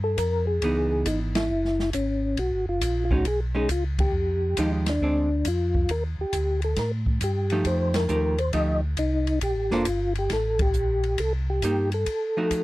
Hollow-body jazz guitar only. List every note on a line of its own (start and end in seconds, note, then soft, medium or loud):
0.63 1.50 E3 medium
0.63 1.51 B3 medium
0.63 1.51 D#4 medium
3.11 3.24 G#3 medium
3.11 3.24 C#4 medium
3.11 3.25 D#4 medium
3.55 3.68 G#3 medium
3.55 3.68 C#4 medium
3.55 3.68 D#4 medium
4.58 4.84 F3 medium
4.58 4.84 G#3 medium
4.58 4.84 D#4 medium
4.58 4.85 G4 medium
5.02 5.28 G#3 soft
5.02 5.28 C4 medium
5.02 5.29 D4 medium
7.52 8.07 F3 medium
7.52 8.07 A3 medium
7.52 8.07 D#4 medium
7.52 8.07 G4 medium
8.09 8.35 F3 medium
8.09 8.35 A3 medium
8.09 8.36 D#4 medium
8.09 8.36 G4 medium
8.53 8.80 F3 medium
8.53 8.80 A3 medium
8.53 8.80 D#4 medium
8.53 8.80 G4 medium
9.72 9.84 A#3 medium
9.72 9.85 D4 medium
9.72 9.85 A4 medium
9.72 9.85 C5 medium
11.64 11.90 A#3 medium
11.64 11.90 D#4 medium
11.64 11.90 G4 medium
12.37 12.64 F3 medium
12.37 12.64 A3 medium
12.37 12.64 D#4 medium
12.37 12.64 F#4 medium